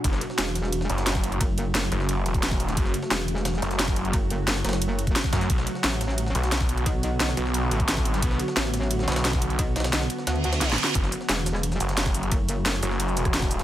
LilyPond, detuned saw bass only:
\new Staff \with { instrumentName = "Detuned saw bass" } { \clef bass \time 4/4 \key fis \minor \tempo 4 = 176 fis,,8 r2 fis,,4. | r4. fis,,4 e,,4. | fis,,8 r2 fis,,4. | r2. r8 fis,8 |
b,,8 r2 b,,4. | r4. b,,4 a,,4. | b,,8 r2 b,,4. | r1 |
fis,,8 r2 fis,,4. | r4. fis,,4 e,,4. | }